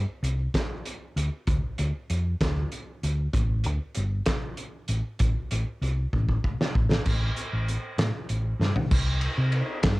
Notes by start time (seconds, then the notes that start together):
0.23 C2, closed hi-hat
0.54 kick, snare, closed hi-hat
0.86 closed hi-hat
1.16 D2, closed hi-hat
1.47 D2, kick, closed hi-hat
1.78 D2, closed hi-hat
2.10 F2, closed hi-hat
2.41 D2, kick, snare, closed hi-hat
2.72 closed hi-hat
3.03 D2, closed hi-hat
3.33 A1, kick, closed hi-hat
3.64 D2, closed hi-hat
3.94 G1, closed hi-hat
4.26 kick, snare, closed hi-hat
4.57 closed hi-hat
4.88 A1, closed hi-hat
5.19 A1, kick, closed hi-hat
5.51 A1, closed hi-hat
5.81 C2, closed hi-hat
6.13 A1, kick
6.29 kick
6.44 kick
6.61 snare
6.75 A1, kick
6.91 snare
7.06 A1, kick, crash
7.36 closed hi-hat
7.53 A1
7.68 closed hi-hat
7.98 A2, snare, closed hi-hat
8.29 A1, closed hi-hat
8.59 G2, snare
8.76 floor tom
8.91 C2, kick, crash
9.21 ride
9.38 C3
9.52 ride
9.83 G2, kick, snare, ride